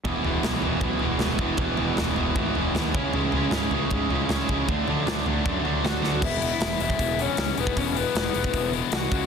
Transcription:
<<
  \new Staff \with { instrumentName = "Lead electric guitar" } { \time 4/4 \key e \major \tempo 4 = 156 r1 | r1 | r1 | r2. <fis' fis''>4 |
<e' e''>4. <e' e''>4 <cis' cis''>4 <b b'>8 | <cis' cis''>8 <b b'>2 r8 <fis' fis''>4 | }
  \new Staff \with { instrumentName = "Distorted electric guitar" } { \clef bass \time 4/4 \key e \major <e gis b e'>8 <e gis b e'>8 <e gis b e'>8 <e gis b e'>8 <e gis b e'>8 <e gis b e'>8 <e gis b e'>8 <e gis b e'>8 | <e gis b e'>8 <e gis b e'>8 <e gis b e'>8 <e gis b e'>8 <e gis b e'>8 <e gis b e'>8 <e gis b e'>8 <cis gis cis' e'>8 | <cis gis cis' e'>8 <cis gis cis' e'>8 <cis gis cis' e'>8 <cis gis cis' e'>8 <cis gis cis' e'>8 <cis gis cis' e'>8 <cis gis cis' e'>8 <cis gis cis' e'>8 | <d fis a d'>8 <d fis a d'>8 <d fis a d'>8 <d fis a d'>8 <d fis a d'>8 <d fis a d'>8 <d fis a d'>8 <d fis a d'>8 |
<e gis b e'>8 <e gis b e'>8 <e gis b e'>8 <e gis b e'>8 <e gis b e'>8 <e gis b e'>8 <e gis b e'>8 <e gis b e'>8 | <e gis b e'>8 <e gis b e'>8 <e gis b e'>8 <e gis b e'>8 <e gis b e'>8 <e gis b e'>8 <e gis b e'>8 <cis gis cis' e'>8 | }
  \new Staff \with { instrumentName = "Overdriven electric guitar" } { \clef bass \time 4/4 \key e \major <e, b, e>8 <e, b, e>8 <e, b, e>8 <e, b, e>8 <e, b, e>8 <e, b, e>8 <e, b, e>8 <e, b, e>8 | <e, b, e>8 <e, b, e>8 <e, b, e>8 <e, b, e>8 <e, b, e>8 <e, b, e>8 <e, b, e>8 <cis gis cis'>8 | <cis gis cis'>8 <cis gis cis'>8 <cis gis cis'>8 <cis gis cis'>8 <cis gis cis'>8 <cis gis cis'>8 <cis gis cis'>8 <cis gis cis'>8 | <d a d'>8 <d a d'>8 <d a d'>8 <d a d'>8 <d a d'>8 <d a d'>8 <d a d'>8 <d a d'>8 |
r1 | r1 | }
  \new Staff \with { instrumentName = "Picked electric bass" } { \clef bass \time 4/4 \key e \major e,,8 e,,8 b,,8 e,,8 b,,8 e,,8 e,,8 e,,8 | e,,8 e,,8 e,,8 e,,8 gis,,8 e,,8 dis,8 cis,8 | cis,8 cis,8 gis,8 cis,8 gis,8 cis,8 cis,8 cis,8 | d,8 d,8 d,8 d,8 fis,8 d,8 d,8 d,8 |
e,,4 e,,8 e,,8 e,,4 cis,8 e,,8 | e,,4 e,,8 e,,8 e,,4 c,8 cis,8 | }
  \new DrumStaff \with { instrumentName = "Drums" } \drummode { \time 4/4 <bd tomfh>8 tomfh8 <sn tomfh>8 tomfh8 <bd tomfh>8 tomfh8 <sn tomfh>8 <bd tomfh>8 | <bd tomfh>8 tomfh8 <sn tomfh>8 tomfh8 <bd tomfh>8 tomfh8 <sn tomfh>8 <bd tomfh>8 | tomfh8 tomfh8 <sn tomfh>8 tomfh8 <bd tomfh>8 tomfh8 <sn tomfh>8 <bd tomfh>8 | <bd tomfh>8 tomfh8 <sn tomfh>8 tomfh8 <bd tomfh>8 tomfh8 <sn tomfh>8 sn8 |
<cymc bd>8 hho8 <hho sn>8 hho16 bd16 <hho bd>8 hho8 <hho sn>8 hho16 bd16 | <hho bd>8 hho8 <hho sn>8 hho16 bd16 <hho bd>8 hho8 <hho sn>8 <hho bd>8 | }
>>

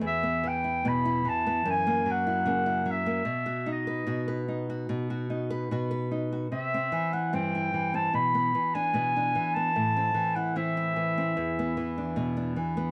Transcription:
<<
  \new Staff \with { instrumentName = "Clarinet" } { \time 4/4 \key e \minor \tempo 4 = 74 e''8 g''8 b''8 a''8 gis''8 fis''4 e''8~ | e''8 dis''4 r2 r8 | e''8. fis''16 g''8. a''16 b''8. gis''4 a''16~ | a''8. fis''16 e''2~ e''8 r8 | }
  \new Staff \with { instrumentName = "Nylon-string guitar" } { \time 4/4 \key e \minor << { r16 b8 e'16 b16 e'8 b16 r16 ais8 e'16 ais16 e'8 ais16 | r16 fis'8 b'16 fis'16 b'8 fis'8 fis'8 b'16 fis'16 b'8 fis'16 | r16 c'8 e'16 c'16 e'8 c'16 r16 b8 d'16 b16 d'8 b16 | r16 c'8 e'16 c'16 e'8 c'16 r16 b8 d'16 b16 d'8 b16 | } \\ { e,8 e8 b,8 e8 fis,8 fis8 cis8 fis8 | b,8 dis'8 b,8 dis'8 b,8 dis'8 b,8 dis'8 | c8 e8 g,8 e8 b,8 e8 b,8 e8 | a,8 e8 e8 e8 e,8 e8 b,8 e8 | } >> }
>>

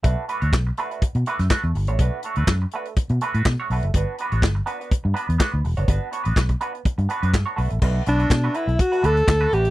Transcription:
<<
  \new Staff \with { instrumentName = "Alto saxophone" } { \time 4/4 \key b \minor \tempo 4 = 124 r1 | r1 | r1 | r1 |
r8 d'4 e'8 fis'8 a'4 g'8 | }
  \new Staff \with { instrumentName = "Clean electric guitar" } { \time 4/4 \key b \minor <a d' fis' b'>8 <a d' fis' b'>16 <a d' fis' cis''>16 r8 <a d' fis' b'>16 <a d' fis' b'>16 r8 <a d' fis' b'>8 <a d' fis' b'>8 r16 <a d' fis' cis''>16 | <a d' fis' b'>8 <a d' fis' cis''>16 <a d' fis' b'>16 r8 <a d' fis' b'>8 r8 <a d' fis' b'>16 <a d' fis' b'>16 r16 <a d' fis' cis''>16 <a d' fis' b'>8 | <b d' fis' b'>8 <b d' fis' b'>16 <b d' fis' cis''>16 r8 <b d' fis' b'>16 <b d' fis' b'>16 r8 <b d' fis' b'>8 <b d' fis' b'>8 r16 <b d' fis' cis''>16 | <b d' fis' b'>8 <b d' fis' cis''>16 <b d' fis' b'>16 r8 <b d' fis' b'>8 r8 <b d' fis' b'>16 <b d' fis' b'>16 r16 <b d' fis' cis''>16 <a d' fis' b'>8 |
<a d' fis' b'>8 <a d' fis' b'>16 <a d' fis' b'>16 r16 <a d' fis' b'>16 <a d' fis' b'>8 r16 <a d' fis' b'>16 <a d' fis' b'>8 r16 <a d' fis' b'>16 <a d' fis' b'>16 r16 | }
  \new Staff \with { instrumentName = "Fingered electric bass" } { \clef bass \time 4/4 \key b \minor b,,16 r8 d,16 b,,8 r8. b,16 r16 fis,16 r16 e,16 g,,16 a,,16 | b,,16 r8 d,16 fis,8 r8. b,16 r16 a,16 b,16 r16 b,,16 fis,,16 | g,,16 r8 a,,16 g,,8 r8. g,16 r16 e,16 r16 d,16 e,,16 fis,,16 | g,,16 r8 a,,16 b,,8 r8. g,16 r16 fis,16 g,16 r16 b,,16 a,,16 |
b,,8 b,,8 b,8 r16 b,,16 r8 d,8 d,8 a,,8 | }
  \new DrumStaff \with { instrumentName = "Drums" } \drummode { \time 4/4 <hh bd>8 hh16 hh16 <hc bd sn>8 hh16 hh16 <hh bd>16 hh16 hh16 <hh sn>16 <hc bd sn>8 hho16 hh16 | <hh bd>8 hh16 hh16 <hc bd sn>8 hh16 hh16 <hh bd>16 hh16 hh16 hh16 <hc bd sn>8 hho16 hh16 | <hh bd>8 hh16 hh16 <hc bd sn>8 hh16 hh16 <hh bd>8 hh16 hh16 <hc bd sn>8 hho16 hh16 | <hh bd>8 hh16 hh16 <hc bd sn>16 <hh bd>16 hh16 hh16 <hh bd>16 hh16 hh16 hh16 <hc bd sn>8 hho16 hh16 |
<cymc bd>8 hh16 hh16 <hc bd sn>8 hh16 hh16 <hh bd>16 hh16 hh16 hh16 <hc bd sn>8 hh16 hh16 | }
>>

